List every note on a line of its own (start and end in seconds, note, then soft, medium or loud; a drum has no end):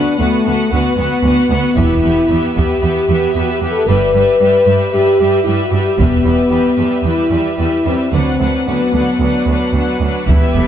0.00 0.18 B3 soft
0.00 0.19 D4 medium
0.00 0.18 F#4 soft
0.00 0.18 B4 soft
0.00 0.18 F#5 soft
0.17 0.27 D2 soft
0.17 0.71 A3 medium
0.17 0.44 B3 soft
0.17 0.45 F#4 soft
0.17 0.45 B4 soft
0.17 0.45 F#5 soft
0.45 0.56 D2 soft
0.45 0.70 B3 soft
0.45 0.70 F#4 soft
0.45 0.71 B4 soft
0.45 0.71 F#5 soft
0.71 0.81 D2 soft
0.71 1.77 B3 medium
0.71 0.97 B3 soft
0.71 0.97 F#4 soft
0.71 0.96 B4 soft
0.71 0.96 F#5 soft
0.97 1.06 D2 soft
0.97 1.23 B3 soft
0.97 1.23 F#4 soft
0.97 1.23 B4 soft
0.97 1.23 F#5 soft
1.24 1.32 D2 soft
1.24 1.49 B3 soft
1.24 1.50 F#4 soft
1.24 1.49 B4 soft
1.24 1.48 F#5 soft
1.49 1.59 D2 soft
1.49 1.76 B3 soft
1.49 1.77 F#4 soft
1.49 1.76 B4 soft
1.49 1.76 F#5 soft
1.76 2.02 E1 soft
1.76 1.85 E2 soft
1.76 2.03 B3 soft
1.76 2.40 E4 medium
1.76 2.02 G4 soft
1.76 2.00 B4 soft
1.76 1.99 E5 soft
1.76 taiko soft
2.00 2.12 E2 soft
2.00 2.29 B3 soft
2.00 2.29 G4 soft
2.00 2.28 B4 soft
2.00 2.26 E5 soft
2.27 2.38 E2 soft
2.27 2.55 B3 soft
2.27 2.55 G4 soft
2.27 2.53 B4 soft
2.27 2.53 E5 soft
2.55 2.65 E2 soft
2.55 2.82 B3 soft
2.55 2.82 G4 soft
2.55 3.35 G4 medium
2.55 2.82 B4 soft
2.55 2.81 E5 soft
2.55 taiko soft
2.82 2.91 E2 soft
2.82 3.09 B3 soft
2.82 3.09 G4 soft
2.82 3.08 B4 soft
2.82 3.07 E5 soft
3.08 3.17 E2 soft
3.08 3.35 B3 soft
3.08 3.35 G4 soft
3.08 3.35 B4 soft
3.08 3.34 E5 soft
3.33 3.44 E2 soft
3.33 3.62 B3 soft
3.33 3.52 F#4 medium
3.33 3.62 G4 soft
3.33 3.62 B4 soft
3.33 3.61 E5 soft
3.52 3.70 G4 medium
3.61 3.69 E2 soft
3.61 3.88 B3 soft
3.61 3.88 G4 soft
3.61 3.86 B4 soft
3.61 3.86 E5 soft
3.71 3.88 A4 medium
3.87 4.12 G1 soft
3.87 3.96 G2 soft
3.87 4.14 G3 soft
3.87 4.15 G4 soft
3.87 4.93 B4 medium
3.87 4.14 B4 soft
3.87 4.14 E5 soft
4.14 4.22 G2 soft
4.14 4.41 G3 soft
4.14 4.41 G4 soft
4.14 4.40 B4 soft
4.14 4.41 E5 soft
4.40 4.48 G2 soft
4.40 4.66 G3 soft
4.40 4.66 G4 soft
4.40 4.65 B4 soft
4.40 4.65 E5 soft
4.66 4.75 G2 soft
4.66 4.93 G3 soft
4.66 4.93 G4 soft
4.66 4.93 B4 soft
4.66 4.93 E5 soft
4.92 5.02 G2 soft
4.92 5.19 G3 soft
4.92 5.45 G4 medium
4.92 5.19 G4 soft
4.92 5.20 B4 soft
4.92 5.20 E5 soft
5.20 5.28 G2 soft
5.20 5.45 G3 soft
5.20 5.45 G4 soft
5.20 5.45 B4 soft
5.20 5.45 E5 soft
5.43 5.54 G2 soft
5.43 5.70 G3 soft
5.43 5.62 E4 medium
5.43 5.70 G4 soft
5.43 5.72 B4 soft
5.43 5.72 E5 soft
5.64 5.82 F#4 medium
5.71 5.80 G2 soft
5.71 5.97 G3 soft
5.71 5.97 G4 soft
5.71 5.98 B4 soft
5.71 5.98 E5 soft
5.83 6.00 G4 medium
5.98 6.24 E1 soft
5.98 6.06 E2 soft
5.98 6.22 G3 soft
5.98 7.06 B3 medium
5.98 6.23 G4 soft
5.98 6.24 B4 soft
5.98 6.25 E5 soft
5.98 taiko soft
6.24 6.32 E2 soft
6.24 6.49 G3 soft
6.24 6.49 G4 soft
6.24 6.50 B4 soft
6.24 6.49 E5 soft
6.50 6.59 E2 soft
6.50 6.76 G3 soft
6.50 6.76 G4 soft
6.50 6.75 B4 soft
6.50 6.75 E5 soft
6.76 6.86 E2 soft
6.76 7.04 G3 soft
6.76 7.04 G4 soft
6.76 7.04 B4 soft
6.76 7.04 E5 soft
7.04 7.12 E2 soft
7.04 7.30 G3 soft
7.04 7.85 E4 medium
7.04 7.30 G4 soft
7.04 7.31 B4 soft
7.04 7.32 E5 soft
7.31 7.39 E2 soft
7.31 7.57 G3 soft
7.31 7.58 G4 soft
7.31 7.57 B4 soft
7.31 7.57 E5 soft
7.58 7.67 E2 soft
7.58 7.85 G3 soft
7.58 7.85 G4 soft
7.58 7.83 B4 soft
7.58 7.84 E5 soft
7.84 7.92 E2 soft
7.84 8.13 G3 soft
7.84 8.10 C4 soft
7.84 8.13 G4 soft
7.84 8.11 B4 soft
7.84 8.12 E5 soft
8.12 8.20 D2 soft
8.12 8.38 D2 soft
8.12 8.39 F#3 soft
8.12 8.66 C4 soft
8.12 8.39 D4 soft
8.12 8.39 B4 soft
8.12 8.40 F#5 soft
8.40 8.48 D2 soft
8.40 8.67 F#3 soft
8.40 8.67 D4 soft
8.40 8.66 B4 soft
8.40 8.66 F#5 soft
8.67 8.75 D2 soft
8.67 8.94 F#3 soft
8.67 10.02 B3 soft
8.67 8.94 D4 soft
8.67 8.94 B4 soft
8.67 8.94 F#5 soft
8.93 9.01 D2 soft
8.93 9.21 F#3 soft
8.93 9.21 D4 soft
8.93 9.21 B4 soft
8.93 9.21 F#5 soft
9.20 9.28 D2 soft
9.20 9.48 F#3 soft
9.20 9.49 D4 soft
9.20 9.48 B4 soft
9.20 9.49 F#5 soft
9.47 9.55 D2 soft
9.47 9.76 F#3 soft
9.47 9.76 D4 soft
9.51 9.76 B4 soft
9.51 9.76 F#5 soft
9.73 9.81 D2 soft
9.73 10.02 F#3 soft
9.73 10.02 D4 soft
9.73 10.03 B4 soft
9.78 10.03 F#5 soft
10.01 10.09 D2 soft
10.01 10.29 F#3 soft
10.01 10.29 D4 soft
10.01 10.29 B4 soft
10.01 10.29 F#5 soft
10.27 10.36 E1 soft
10.27 10.37 E2 soft
10.27 10.55 G3 soft
10.27 10.67 B3 soft
10.27 10.67 B3 medium
10.27 10.55 E4 soft
10.27 10.67 G4 soft
10.27 10.54 G4 soft
10.27 10.67 B4 soft
10.27 10.54 B4 soft
10.27 10.67 E5 soft
10.27 taiko soft
10.54 10.62 E1 soft
10.54 10.64 E2 soft
10.54 10.67 G3 soft
10.54 10.67 E4 soft
10.54 10.67 A4 soft
10.54 10.67 B4 soft